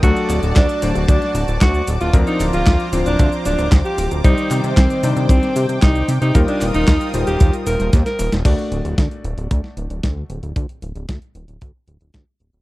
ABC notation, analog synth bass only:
X:1
M:4/4
L:1/16
Q:1/4=114
K:Dphr
V:1 name="Analog synth bass" clef=bass
D,, z D,,, D,,, D,, z D,,, D,,, D,, z D,,, D,,, D,,2 D,,, D,,, | D,, z D,,, D,,, D,, z D,,, D,,, D,, z D,,, D,,, D,, z D,,, D,,, | C,, z C, C, C,, z C, C, C,, z C, C, C,,2 C, C, | E,, z E,,, E,,, E,, z E,,, E,,, E,, z E,,, E,,, E,, z E,,, E,,, |
D,, z D,,, D,,, D,, z D,,, D,,, D,, z D,,, D,,, D,,2 D,,, D,,, | D,, z D,,, D,,, D,, z D,,, D,,, D,, z D,,, D,,, D,, z D,,, D,,, |]